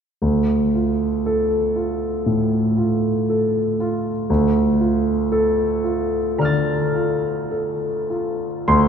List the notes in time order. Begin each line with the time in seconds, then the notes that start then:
0.22 D2
0.74 F4
1.26 A4
1.76 F4
2.26 A2
2.77 F4
3.30 A4
3.80 F4
4.30 D2
4.80 F4
5.32 A4
5.84 F4
6.38 D3 A#5 F6
6.45 A6
6.95 F4
7.51 A4
8.10 F4
8.68 D2 C6